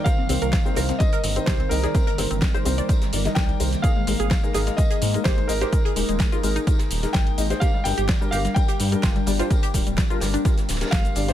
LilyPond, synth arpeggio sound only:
\new Staff \with { instrumentName = "Synth arpeggio sound" } { \time 4/4 \key c \minor \tempo 4 = 127 bes'16 c'16 c'16 bes'16 c'16 c'16 bes'16 c'16 c'16 bes'16 c'16 c'16 g'16 c'16 c'16 aes'16 | c'16 bes'16 c'16 c'16 c'16 c''16 c'16 d''2 r16 | aes'16 aes16 aes16 aes'16 aes16 aes16 aes'16 aes16 aes16 aes'16 aes16 aes16 g'16 aes16 aes16 g'16 | aes16 aes'16 aes16 aes16 aes16 f'16 aes16 ees'2 r16 |
g'16 g16 g16 g'16 g16 g16 g'16 g16 g16 g'16 g16 g16 f'16 g16 g16 f'16 | g16 g'16 g16 g16 g16 f'16 g16 d'2 r16 | }